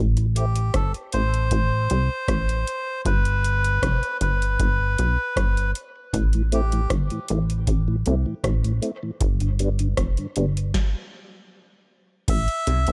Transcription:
Already playing: A1
0.17 A2 E3, closed hi-hat
0.35 A3 C4 E4 G4, closed hi-hat
0.56 A2 E3, closed hi-hat
0.74 G1 A4, kick, cross-stick, closed hi-hat
0.94 A2 E3, closed hi-hat
1.12 A1 A3 C4 E4 C5, closed hi-hat
1.34 closed hi-hat
1.51 A1, kick, closed hi-hat
1.90 C2, closed hi-hat
2.28 A1, kick, cross-stick, closed hi-hat
2.49 closed hi-hat
2.67 E4, closed hi-hat
3.05 G1 B4, kick, closed hi-hat
3.25 closed hi-hat
3.44 closed hi-hat
3.64 closed hi-hat
3.82 F1, kick, cross-stick, closed hi-hat
4.03 closed hi-hat
4.21 G1 B3 D4 B4, closed hi-hat
4.42 closed hi-hat
4.59 G1, kick, closed hi-hat
4.98 B1 G3 B3, closed hi-hat
5.36 G1, kick, cross-stick, closed hi-hat
5.57 closed hi-hat
5.75 G3 B3 D4, closed hi-hat
5.96 G2 D3
6.13 A1, kick, closed hi-hat
6.33 A2 E3, closed hi-hat
6.52 A3 C4 E4 G4, closed hi-hat
6.72 A2 E3, closed hi-hat
6.90 G1, kick, cross-stick, closed hi-hat
7.10 A2 E3, closed hi-hat
7.28 A1 A3 C4 E4, closed hi-hat
7.50 closed hi-hat
7.67 A1, kick, closed hi-hat
7.88 A2 E3
8.06 C2 A3 C4 E4, closed hi-hat
8.26 A2 E3
8.44 A1, kick, cross-stick, closed hi-hat
8.64 A2 E3, closed hi-hat
8.82 A3 C4 E4, closed hi-hat
9.03 A2 E3
9.21 G1, kick, closed hi-hat
9.40 G2 D3, closed hi-hat
9.59 G3 B3 D4, closed hi-hat
9.79 G2 D3, closed hi-hat
9.97 F1, kick, cross-stick, closed hi-hat
10.17 G2 D3, closed hi-hat
10.36 G1 G3 B3 D4, closed hi-hat
10.57 closed hi-hat
10.74 kick, snare
12.28 A1 E5, kick, closed hi-hat, crash
12.48 A2 E3, closed hi-hat
12.67 C2 A3 C4 E4, closed hi-hat
12.87 B1, closed hi-hat

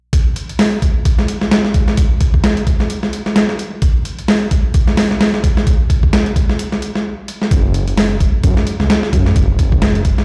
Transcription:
0.13 kick, closed hi-hat
0.36 closed hi-hat
0.49 closed hi-hat
0.59 snare, open hi-hat
0.82 kick, closed hi-hat
1.05 kick, closed hi-hat
1.19 snare
1.28 closed hi-hat
1.41 snare
1.51 snare, closed hi-hat
1.65 snare
1.74 kick, closed hi-hat
1.88 snare
1.97 kick, closed hi-hat
2.21 kick, closed hi-hat
2.34 kick
2.44 snare, closed hi-hat
2.57 closed hi-hat
2.67 kick, closed hi-hat
2.80 snare
2.90 closed hi-hat
3.03 snare
3.13 closed hi-hat
3.26 snare
3.36 snare, closed hi-hat
3.49 snare
3.59 closed hi-hat
3.82 kick, closed hi-hat
4.05 closed hi-hat
4.19 closed hi-hat
4.28 snare, open hi-hat
4.51 kick, closed hi-hat
4.74 kick, closed hi-hat
4.87 snare
4.97 snare, open hi-hat
5.11 snare
5.21 snare, open hi-hat
5.34 snare
5.44 kick, closed hi-hat
5.57 snare
5.67 kick, closed hi-hat
5.90 kick, closed hi-hat
6.03 kick
6.13 snare, closed hi-hat
6.26 closed hi-hat
6.36 kick, closed hi-hat
6.49 snare
6.59 closed hi-hat
6.72 snare
6.82 closed hi-hat
6.95 snare
7.28 closed hi-hat
7.42 snare
7.51 F#1, kick, closed hi-hat
7.74 closed hi-hat
7.88 closed hi-hat
7.97 snare, open hi-hat
8.20 kick, closed hi-hat
8.43 F#2, kick, closed hi-hat
8.57 snare
8.67 closed hi-hat
8.80 C#2, snare
8.90 snare, closed hi-hat
9.03 snare
9.13 F#2, kick, closed hi-hat
9.26 snare
9.36 F#1, kick, closed hi-hat
9.59 kick, closed hi-hat
9.72 kick
9.82 snare, closed hi-hat
9.95 closed hi-hat
10.05 kick, closed hi-hat
10.18 snare

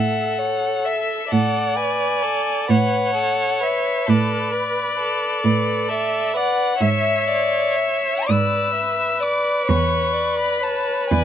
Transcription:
Already playing: A2 A4 E5 F#5
0.39 C#5
0.85 E5
1.31 A2 A4 D5 F#5
1.77 B4 G#5
2.23 A4
2.68 A2 B4 C#5 F#5
3.15 A4
3.61 B4 E5
4.06 A2 A4 B4 D5
4.52 B4
5.00 A4
5.44 A2 A4 B4
5.88 A4 E5
6.34 B4 D5 F#5
6.79 G#2 C#5 E5
7.28 D5
7.76 E5
8.27 G#2 B4 D5 E6
8.74 E5
9.20 D5 D6
9.66 E2 C#5 C#6
10.13 D5
10.39 B5
10.61 C#5 A5
11.10 E2 D5 G#5

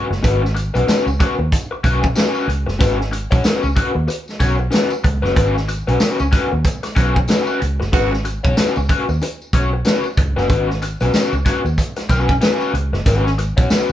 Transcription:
0.10 F#1, muted overdriven electric guitar stroke, snare
0.23 G#1 C#4 F#4 B4, kick, closed hi-hat, tambourine
0.42 muted overdriven electric guitar stroke, snare
0.55 muted overdriven electric guitar stroke, closed hi-hat, tambourine
0.74 B1 C#4 F#4 B4, closed hi-hat, tambourine
0.87 C#4 F#4 B4, snare, closed hi-hat, tambourine
1.06 C#2, muted overdriven electric guitar stroke, tambourine
1.20 C#4 F#4 B4, kick, snare, closed hi-hat
1.39 D#2, muted overdriven electric guitar stroke
1.52 kick, closed hi-hat, tambourine
1.71 muted overdriven electric guitar stroke
1.84 B1 C#4 F#4 B4, kick, closed hi-hat, tambourine
2.03 muted overdriven electric guitar stroke, kick, tambourine
2.16 C#4 F#4 B4, snare, closed hi-hat, tambourine
2.35 tambourine
2.48 C#2, muted overdriven electric guitar stroke, closed hi-hat
2.67 F#1, muted overdriven electric guitar stroke, snare
2.79 G#1 C#4 F#4 B4, kick, closed hi-hat, tambourine
2.99 muted overdriven electric guitar stroke, snare
3.11 muted overdriven electric guitar stroke, closed hi-hat, tambourine
3.31 B1 C#4 F#4 C#5, kick, closed hi-hat, tambourine
3.44 C#4 F#4 B4, snare, closed hi-hat, tambourine
3.63 C#2, muted overdriven electric guitar stroke, tambourine
3.76 C#4 F#4 B4, kick, closed hi-hat
3.95 D#2, muted overdriven electric guitar stroke
4.08 muted overdriven electric guitar stroke, closed hi-hat, tambourine
4.28 snare, tambourine
4.40 B1 C#4 F#4 C#5, kick, closed hi-hat, tambourine
4.59 muted overdriven electric guitar stroke
4.71 C#4 F#4 B4, snare, closed hi-hat, tambourine
4.90 tambourine
5.04 C#2, muted overdriven electric guitar stroke, kick, closed hi-hat
5.22 F#1 C#4 F#4 B4, snare
5.36 G#1 C#4 F#4 B4, kick, closed hi-hat, tambourine
5.55 muted overdriven electric guitar stroke, snare
5.68 muted overdriven electric guitar stroke, closed hi-hat, tambourine
5.87 B1 C#4 F#4 B4, closed hi-hat
6.00 C#4 F#4 B4, snare, closed hi-hat, tambourine
6.19 C#2, muted overdriven electric guitar stroke, tambourine
6.31 C#4 F#4 B4, kick, snare, closed hi-hat
6.52 D#2, muted overdriven electric guitar stroke
6.64 kick, closed hi-hat, tambourine
6.83 muted overdriven electric guitar stroke, snare, closed hi-hat, tambourine
6.96 B1 C#4 F#4 B4, kick, closed hi-hat, tambourine
7.15 muted overdriven electric guitar stroke, kick
7.28 C#4 F#4 B4, snare, closed hi-hat, tambourine
7.47 tambourine
7.61 C#2, muted overdriven electric guitar stroke, closed hi-hat
7.80 F#1, muted overdriven electric guitar stroke, snare
7.93 G#1 C#4 F#4 B4, kick, closed hi-hat, tambourine
8.12 muted overdriven electric guitar stroke, snare
8.25 muted overdriven electric guitar stroke, closed hi-hat, tambourine
8.44 B1 C#4 F#4 C#5, kick
8.57 C#4 F#4 B4, snare, closed hi-hat, tambourine
8.76 C#2, muted overdriven electric guitar stroke, tambourine
8.89 C#4 F#4 B4, kick, closed hi-hat
9.09 D#2, muted overdriven electric guitar stroke, tambourine
9.22 muted overdriven electric guitar stroke, closed hi-hat, tambourine
9.42 tambourine
9.53 B1 C#4 F#4 C#5, kick, closed hi-hat, tambourine
9.73 muted overdriven electric guitar stroke
9.85 C#4 F#4 B4, snare, closed hi-hat, tambourine
10.04 tambourine
10.17 C#2, muted overdriven electric guitar stroke, kick, closed hi-hat
10.36 F#1 C#4 F#4 B4, snare
10.50 G#1 C#4 F#4 B4, kick, closed hi-hat, tambourine
10.69 muted overdriven electric guitar stroke, snare
10.82 muted overdriven electric guitar stroke, closed hi-hat, tambourine
11.00 B1 C#4 F#4 B4, closed hi-hat, tambourine
11.14 C#4 F#4 B4, snare, closed hi-hat, tambourine
11.33 C#2, muted overdriven electric guitar stroke, tambourine
11.45 C#4 F#4 B4, kick, snare, closed hi-hat
11.65 D#2, muted overdriven electric guitar stroke, tambourine
11.78 kick, closed hi-hat, tambourine
11.96 muted overdriven electric guitar stroke, snare, closed hi-hat, tambourine
12.09 B1 C#4 F#4 B4, kick, closed hi-hat, tambourine
12.29 muted overdriven electric guitar stroke, kick, tambourine
12.41 C#4 F#4 B4, snare, closed hi-hat, tambourine
12.61 tambourine
12.73 C#2, muted overdriven electric guitar stroke, closed hi-hat
12.93 F#1, muted overdriven electric guitar stroke, snare
13.06 G#1 C#4 F#4 B4, kick, closed hi-hat, tambourine
13.26 muted overdriven electric guitar stroke, snare
13.38 muted overdriven electric guitar stroke, closed hi-hat, tambourine
13.57 B1 C#4 F#4 C#5, kick, closed hi-hat, tambourine
13.70 C#4 F#4 B4, snare, closed hi-hat, tambourine

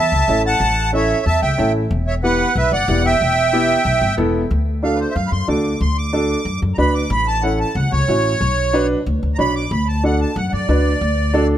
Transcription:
Already playing: E5 A5
0.12 C#2
0.28 A1 C#4 E4 A4
0.46 F#5 A5
0.60 A1
0.93 C#4 E4 A4 C#5 E5
1.26 E2 E5 A5
1.42 C#2 E5 G5
1.58 A1 C#4 E4 A4
1.91 E1
2.07 C#5 E5
2.23 B3 E4 G4 B4 F#5
2.55 B1 B4 E5
2.72 G1 D5 F#5
2.88 E1 B3 E4 G4
3.06 E5 G5
3.21 E1
3.53 B3 E4 G4
3.85 B1
4.01 G1
4.17 E1 B3 E4 A4
4.51 D2
4.83 D4 F#4 A4 F5
4.95 B4
5.00 C5
5.11 E5
5.15 F#2 F5
5.27 B5
5.32 F#2 C6
5.48 D2 D4 F#4 A4 D6
5.81 D2 C6
5.98 D6
6.13 D4 F#4 A4
6.45 F#2
6.62 F#2
6.74 D2 D4 F#4 A#5
6.78 B4 B5
6.94 D6
7.10 A1 B5
7.27 A5
7.43 C#4 E4 A4 F#5
7.60 A5
7.75 C#2 F#5
7.92 C#2 C#5
8.08 A1 C#4 E4 F#4
8.41 B1
8.73 D4 F#4 B4
9.06 D2
9.23 D2
9.35 D4 F#4 A#5
9.39 B1 C#5 B5
9.56 D6
9.71 D2 B5
9.88 A5
10.04 D4 F#4 A4 F#5
10.21 A5
10.36 F#2 F#5
10.53 F#2 D5
10.69 D2 D4 F#4 B4
11.01 D2
11.34 D4 F#4 A4

